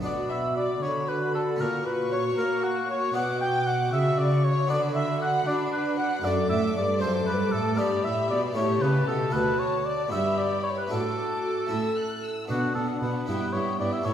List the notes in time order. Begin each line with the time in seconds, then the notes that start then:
0.00 B2 B3 D4 F#4 D5 B5
0.05 B2 F#4 D5
0.30 E5
0.56 D5
0.82 D3 F#4 C#5 B5
1.08 B4
1.34 A4
1.56 C#4 F#4
1.61 A#2 A#4 C#6
1.86 B4
2.11 C#5
2.36 A#3 A#4
2.63 F#4
2.89 C#5
3.13 B2 B3 D4 F#4 F#5 D6
3.17 B2
3.41 G5
3.67 F#5
3.93 C#3 F#4 E5 C#6
4.18 D5
4.44 C#5
4.67 D3 B3 D4 F#4 D5 B5
4.72 D3
4.95 E5
5.21 F#5
5.47 D4 F#4 D5 B5
5.73 B4
5.98 F#5
6.21 F#2 A3 D4 A4 D5 D6
6.26 F#2
6.49 A2 E5
6.75 G2 D5
6.99 F#2 A3 D4 A4 C5 D6
7.03 F#2
7.26 G2 B4
7.52 A2 A4
7.75 G2 B3 D4 G4 D5 B5
7.80 G2
8.04 A2 E5
8.30 B2 D5
8.52 A2 A3 E4 G4 C#5
8.56 A2 A5
8.81 C#3 B4
9.06 B2 A4
9.30 D2 A3 F#4 B4 A5
9.34 D2
9.58 C#5
9.85 D5
10.08 B3 E4 G4 E5 B5
10.12 G2 G4
10.38 D5
10.63 C#5
10.78 B4
10.88 A2 A3 D4 F#4 A4 D6
10.92 A2 F#4
11.67 A2 A3 C#4 E4 E6
11.71 A2 A4
11.96 F#6
12.23 E6
12.47 B2 B3 D4 F#4 F#5
12.74 B2 B3 D4 A4 F#5
13.01 B2 B3 D4 B4 F#5
13.26 G2 B3 E4 G5
13.53 G2 B3 E4 C#5 G5
13.79 G2 B3 E4 D5 G5
13.93 E5
14.02 A2 A3 E4 C#5 A5
14.06 A2